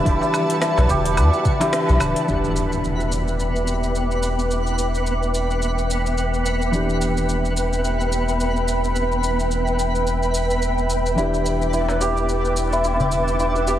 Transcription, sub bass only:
0.06 0.18 E1 loud
0.77 0.87 B1 medium
0.90 1.19 E1 medium
1.17 1.30 E2 loud
1.89 1.98 B1 loud
2.01 2.13 D1 medium
2.29 11.15 E1 medium
11.17 13.79 E1 medium

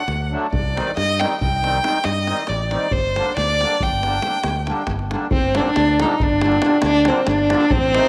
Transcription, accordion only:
0.30 0.46 D3 medium
0.30 0.47 F#3 medium
0.30 0.47 A3 medium
0.30 0.47 D4 medium
0.75 0.91 D#3 medium
0.75 0.91 G3 medium
0.75 0.91 C4 medium
0.75 0.91 D#4 medium
1.19 1.35 D#3 medium
1.19 1.35 G3 medium
1.19 1.35 C4 medium
1.19 1.36 D#4 medium
1.62 1.78 D#3 medium
1.62 1.78 G3 medium
1.62 1.79 C4 medium
1.62 1.79 D#4 medium
1.81 1.97 D#3 medium
1.81 1.98 G3 medium
1.81 1.98 C4 medium
1.81 1.98 D#4 medium
2.26 2.42 D#3 medium
2.26 2.42 G3 medium
2.26 2.43 C4 medium
2.26 2.43 D#4 medium
2.70 2.86 D#3 medium
2.70 2.86 G3 medium
2.70 2.87 C4 medium
2.70 2.87 D#4 medium
3.15 3.31 D3 medium
3.15 3.32 G3 medium
3.15 3.32 A#3 medium
3.15 3.32 D4 medium
3.60 3.76 D3 medium
3.60 3.76 G3 medium
3.60 3.76 A#3 medium
3.60 3.77 D4 medium
4.03 4.18 D3 medium
4.03 4.18 G3 medium
4.03 4.19 A#3 medium
4.03 4.19 D4 medium
4.22 4.37 D3 medium
4.22 4.38 G3 medium
4.22 4.38 A#3 medium
4.22 4.38 D4 medium
4.66 4.82 D3 medium
4.66 4.82 G3 medium
4.66 4.83 A#3 medium
4.66 4.83 D4 medium
5.10 5.26 D3 medium
5.10 5.26 G3 medium
5.10 5.26 A#3 medium
5.10 5.27 D4 medium
5.54 5.70 A#2 medium
5.54 5.70 D3 medium
5.54 5.70 G3 medium
5.54 5.71 A#3 medium
5.54 5.71 D4 medium
5.99 6.14 A#2 medium
5.99 6.15 D3 medium
5.99 6.15 G3 medium
5.99 6.15 A#3 medium
5.99 6.15 D4 medium
6.43 6.57 A#2 medium
6.43 6.58 D3 medium
6.43 6.58 G3 medium
6.43 6.58 A#3 medium
6.43 6.58 D4 medium
6.62 6.77 A#2 medium
6.62 6.77 D3 medium
6.62 6.77 G3 medium
6.62 6.77 A#3 medium
6.62 6.78 D4 medium
7.06 7.21 A#2 medium
7.06 7.21 D3 medium
7.06 7.21 G3 medium
7.06 7.22 A#3 medium
7.06 7.22 D4 medium
7.50 7.65 A#2 medium
7.50 7.65 D3 medium
7.50 7.65 G3 medium
7.50 7.65 A#3 medium
7.50 7.66 D4 medium
7.93 8.09 C3 medium
7.93 8.09 D#3 medium
7.93 8.09 A3 medium
7.93 8.09 C4 medium
7.93 8.09 D#4 medium

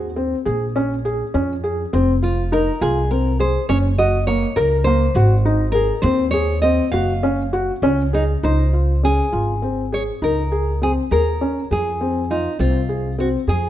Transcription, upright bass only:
0.00 0.33 D#2 medium
0.46 1.21 A#1 medium
1.34 1.84 F2 medium
1.93 2.68 F1 medium
2.81 3.56 C2 medium
3.69 4.44 F#1 medium
4.57 5.06 C#2 medium
5.15 5.90 G#1 medium
6.03 6.79 D#2 loud
6.92 7.69 F#1 medium
7.82 8.34 C#2 medium
8.43 9.20 C#2 medium
9.33 10.09 G#1 medium
10.22 10.97 C#2 medium
11.11 11.61 D#2 medium
11.71 12.46 F2 medium
12.59 13.34 C2 medium
13.47 13.69 F2 medium

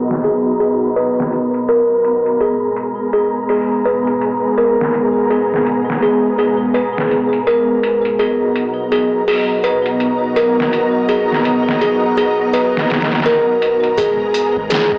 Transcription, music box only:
0.00 0.21 G#4 medium
0.24 0.59 G#4 medium
0.60 0.95 G#4 medium
0.96 1.31 B4 medium
1.69 2.04 A#4 medium
2.41 3.10 G#4 medium
3.13 3.48 G#4 medium
3.50 3.84 G#4 medium
3.85 4.20 B4 medium
4.58 4.93 A#4 medium
5.30 6.00 G#4 medium
6.03 6.37 G#4 medium
6.38 6.73 G#4 medium
6.74 7.09 B4 medium
7.47 7.82 A#4 medium
8.19 8.89 G#4 medium
8.92 9.26 G#4 medium
9.28 9.63 G#4 medium
9.64 9.99 B4 medium
10.36 10.71 A#4 medium
11.09 11.78 G#4 medium
11.82 12.16 G#4 medium
12.17 12.52 G#4 medium
12.53 12.88 B4 medium
13.26 13.60 A#4 medium
13.98 14.67 G#4 medium
14.70 14.98 G#4 medium

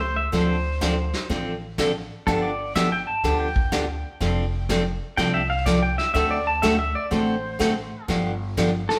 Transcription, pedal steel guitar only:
0.01 0.16 C5 medium
0.16 0.32 E5 medium
0.33 1.27 C5 loud
2.27 2.42 A4 loud
2.42 2.74 D5 medium
2.76 2.91 E5 medium
2.92 3.07 G5 medium
3.07 3.39 A5 loud
3.40 4.81 G5 medium
5.17 5.33 G5 loud
5.34 5.49 E5 medium
5.50 5.66 F5 loud
5.66 5.82 D5 medium
5.82 5.98 G5 medium
5.98 6.13 E5 medium
6.14 6.30 E5 loud
6.31 6.46 D5 loud
6.47 6.63 A5 medium
6.62 6.78 E5 loud
6.79 6.95 E5 medium
6.95 7.11 D5 medium
7.11 8.05 C5 loud
8.89 8.99 A4 medium

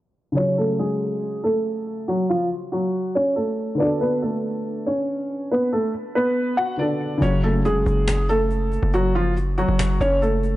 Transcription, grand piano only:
0.32 3.73 C#3 medium
0.32 3.75 F#3 medium
0.38 3.76 F#4 medium
3.75 6.73 D3 medium
3.75 6.75 B3 medium
3.81 6.76 F#4 medium
3.81 6.78 A4 medium
6.77 7.21 D3 medium
6.77 7.22 B3 soft
6.77 7.22 F#4 soft
6.81 7.23 A4 medium
7.18 10.56 C#3 medium
7.18 10.56 F#3 medium
7.24 10.56 F#4 medium

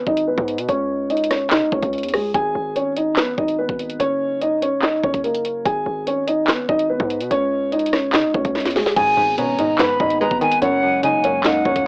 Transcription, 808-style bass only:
0.07 0.37 G#1 loud
0.38 0.60 G#2 loud
0.58 0.68 B2 loud
0.69 1.53 C#2 loud
1.52 1.63 C#3 loud
1.62 1.72 C#2 loud
1.72 1.82 C#2 loud
1.83 2.05 C#2 loud
2.03 2.20 E2 loud
2.19 2.34 C#2 loud
2.34 2.54 G#1 loud
2.55 3.19 G#1 loud
3.17 3.29 B1 loud
3.28 3.37 G#1 loud
3.38 3.68 G#1 loud
3.69 3.99 G#1 loud
4.00 4.53 F#1 loud
4.52 4.79 E1 loud
4.77 5.02 F#1 loud
5.03 5.13 F#1 loud
5.14 5.63 F#1 loud
5.65 5.85 G#1 loud
5.86 6.66 G#1 loud
6.69 6.99 G#1 loud
7.00 7.22 G#2 loud
7.21 7.30 B2 loud
7.31 8.15 C#2 loud
8.14 8.26 C#3 loud
8.24 8.34 C#2 loud
8.34 8.44 C#2 loud
8.45 8.67 C#2 loud
8.65 8.82 E2 loud
8.81 8.96 C#2 loud
8.97 9.16 G#1 loud
9.17 9.81 G#1 loud
9.79 9.91 B1 loud
9.90 9.99 G#1 loud
10.00 10.30 G#1 loud
10.31 10.61 G#1 loud
10.62 11.15 F#1 loud
11.14 11.41 E1 loud
11.40 11.64 F#1 loud
11.65 11.75 F#1 loud
11.76 11.87 F#1 loud

